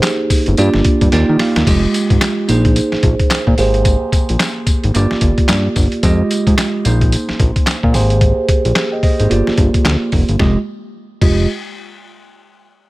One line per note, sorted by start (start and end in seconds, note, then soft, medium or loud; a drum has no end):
0.00 0.55 A#3 medium
0.00 0.55 D#4 medium
0.00 0.56 G4 medium
0.00 0.56 G#4 medium
0.00 0.56 C5 medium
0.00 snare loud
0.00 clap medium
0.00 closed hi-hat medium
0.00 tambourine medium
0.30 0.37 G1 soft
0.30 kick loud
0.30 open hi-hat medium
0.30 tambourine medium
0.46 0.55 G1 loud
0.46 closed hi-hat medium
0.57 0.70 G2 loud
0.57 1.11 A#3 medium
0.57 1.13 D4 medium
0.57 1.12 F4 medium
0.57 1.12 G4 medium
0.57 1.13 D5 medium
0.57 closed hi-hat medium
0.57 tambourine medium
0.74 0.82 G1 loud
0.74 snare medium
0.85 kick loud
0.85 closed hi-hat medium
1.01 1.09 G2 medium
1.01 kick loud
1.01 closed hi-hat medium
1.12 1.24 D#2 loud
1.12 1.67 A#3 medium
1.12 1.67 D#4 medium
1.12 1.66 F4 medium
1.12 1.66 G4 medium
1.12 1.68 D5 medium
1.12 1.38 G5 medium
1.12 snare medium
1.12 closed hi-hat medium
1.29 1.37 D#3 medium
1.39 1.65 F5 medium
1.39 snare medium
1.39 open hi-hat medium
1.56 1.64 D#2 medium
1.56 snare loud
1.56 closed hi-hat medium
1.67 1.87 F1 loud
1.67 2.49 G#3 medium
1.67 2.49 F4 medium
1.67 2.49 G4 medium
1.67 2.49 D#5 medium
1.67 kick loud
1.67 closed hi-hat medium
1.67 crash loud
1.67 tambourine medium
1.94 closed hi-hat medium
1.94 tambourine medium
2.10 2.18 G#1 medium
2.10 kick medium
2.10 closed hi-hat medium
2.21 snare loud
2.21 clap medium
2.21 closed hi-hat medium
2.21 tambourine medium
2.48 2.80 A#1 loud
2.48 3.55 A#3 medium
2.48 3.55 D#4 medium
2.48 3.56 G#4 medium
2.48 3.56 C5 medium
2.48 closed hi-hat medium
2.48 tambourine medium
2.65 kick loud
2.65 closed hi-hat soft
2.76 closed hi-hat medium
2.76 tambourine medium
2.92 2.97 A#1 soft
2.92 snare medium
3.03 3.15 A#1 loud
3.03 kick loud
3.03 closed hi-hat medium
3.19 kick loud
3.19 closed hi-hat medium
3.30 snare loud
3.30 clap loud
3.30 closed hi-hat medium
3.30 tambourine medium
3.47 3.55 A#2 medium
3.47 kick medium
3.58 3.97 G#1 loud
3.58 4.91 A#3 medium
3.58 4.92 G4 medium
3.58 4.92 G#4 medium
3.58 4.93 C5 medium
3.58 open hi-hat medium
3.58 tambourine medium
3.74 closed hi-hat soft
3.85 kick loud
3.85 closed hi-hat medium
3.85 tambourine medium
4.12 kick loud
4.12 closed hi-hat medium
4.12 tambourine medium
4.29 4.37 A#1 medium
4.29 closed hi-hat medium
4.40 snare loud
4.40 clap medium
4.40 closed hi-hat medium
4.40 tambourine medium
4.67 4.73 G#1 soft
4.67 kick loud
4.67 closed hi-hat medium
4.67 tambourine medium
4.84 4.92 G#1 medium
4.84 closed hi-hat medium
4.94 5.07 G1 loud
4.94 6.01 A#3 medium
4.94 6.02 F4 medium
4.94 6.02 G4 medium
4.94 6.02 D5 medium
4.94 closed hi-hat medium
4.94 tambourine medium
5.11 5.15 G1 medium
5.11 snare medium
5.21 5.33 G1 loud
5.21 kick loud
5.21 closed hi-hat medium
5.38 kick medium
5.38 closed hi-hat medium
5.48 5.69 G2 medium
5.48 snare loud
5.48 clap loud
5.48 closed hi-hat medium
5.48 tambourine medium
5.76 5.88 G1 loud
5.76 kick loud
5.76 open hi-hat medium
5.76 tambourine medium
5.92 closed hi-hat soft
6.03 6.23 F2 loud
6.03 6.85 G#3 medium
6.03 6.86 F4 medium
6.03 6.86 G4 medium
6.03 6.86 D#5 medium
6.03 kick loud
6.03 closed hi-hat medium
6.03 tambourine medium
6.31 closed hi-hat medium
6.31 tambourine medium
6.47 6.55 G#2 medium
6.47 kick medium
6.47 closed hi-hat medium
6.58 snare loud
6.58 clap medium
6.58 closed hi-hat medium
6.58 tambourine loud
6.85 7.17 A#1 loud
6.85 7.92 A#3 medium
6.85 7.92 D#4 medium
6.85 7.92 G#4 medium
6.85 7.93 C5 medium
6.85 closed hi-hat medium
6.85 tambourine medium
7.01 kick loud
7.01 closed hi-hat medium
7.12 closed hi-hat medium
7.12 tambourine medium
7.29 7.33 A#1 medium
7.29 snare medium
7.40 7.52 A#1 loud
7.40 kick loud
7.40 closed hi-hat medium
7.56 kick medium
7.56 closed hi-hat medium
7.66 snare loud
7.66 clap loud
7.66 closed hi-hat medium
7.66 tambourine medium
7.83 7.96 A#2 loud
7.83 kick medium
7.93 8.33 G#1 medium
7.93 9.27 A#3 medium
7.93 8.74 G4 medium
7.93 8.75 G#4 medium
7.93 8.75 C5 medium
7.93 open hi-hat medium
7.93 tambourine medium
8.10 closed hi-hat soft
8.21 kick loud
8.21 closed hi-hat medium
8.49 kick loud
8.49 closed hi-hat medium
8.65 8.73 A#1 medium
8.65 closed hi-hat medium
8.75 snare loud
8.75 clap medium
8.75 closed hi-hat medium
8.92 9.02 D#5 medium
8.92 9.02 G5 medium
9.03 9.10 G#1 soft
9.03 9.18 C5 medium
9.03 9.19 D#5 medium
9.03 kick loud
9.03 open hi-hat medium
9.19 9.28 G#1 medium
9.19 9.46 G#4 medium
9.19 9.45 C5 medium
9.19 closed hi-hat medium
9.29 9.42 G1 loud
9.29 10.37 A#3 medium
9.29 10.37 F4 medium
9.29 10.37 G4 medium
9.29 10.38 D5 medium
9.29 closed hi-hat medium
9.47 snare medium
9.58 9.70 G1 loud
9.58 kick loud
9.58 closed hi-hat medium
9.74 kick medium
9.74 closed hi-hat medium
9.85 9.97 D2 loud
9.85 snare loud
9.85 clap loud
9.85 closed hi-hat medium
10.12 10.24 F1 medium
10.12 kick medium
10.12 open hi-hat medium
10.29 10.37 G1 medium
10.29 closed hi-hat soft
10.39 10.57 F1 loud
10.39 10.57 G#3 medium
10.39 10.57 F4 medium
10.39 10.57 G4 medium
10.39 10.57 D#5 medium
10.39 kick loud
10.39 snare medium
11.21 11.47 F1 loud
11.21 11.47 G#3 medium
11.21 11.47 F4 medium
11.21 11.47 G4 medium
11.21 11.47 D#5 loud
11.21 kick loud
11.21 crash medium